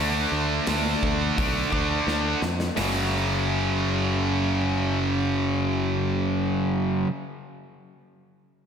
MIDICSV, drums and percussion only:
0, 0, Header, 1, 2, 480
1, 0, Start_track
1, 0, Key_signature, 3, "minor"
1, 0, Tempo, 700117
1, 1905, Time_signature, 4, 2, 24, 8
1, 5939, End_track
2, 0, Start_track
2, 0, Title_t, "Drums"
2, 458, Note_on_c, 9, 46, 50
2, 462, Note_on_c, 9, 38, 98
2, 526, Note_off_c, 9, 46, 0
2, 530, Note_off_c, 9, 38, 0
2, 705, Note_on_c, 9, 36, 71
2, 774, Note_off_c, 9, 36, 0
2, 947, Note_on_c, 9, 36, 100
2, 948, Note_on_c, 9, 46, 49
2, 1016, Note_off_c, 9, 36, 0
2, 1017, Note_off_c, 9, 46, 0
2, 1183, Note_on_c, 9, 36, 66
2, 1252, Note_off_c, 9, 36, 0
2, 1425, Note_on_c, 9, 38, 51
2, 1494, Note_off_c, 9, 38, 0
2, 1662, Note_on_c, 9, 38, 73
2, 1730, Note_off_c, 9, 38, 0
2, 1782, Note_on_c, 9, 38, 74
2, 1851, Note_off_c, 9, 38, 0
2, 1900, Note_on_c, 9, 46, 66
2, 1904, Note_on_c, 9, 38, 83
2, 1968, Note_off_c, 9, 46, 0
2, 1972, Note_off_c, 9, 38, 0
2, 5939, End_track
0, 0, End_of_file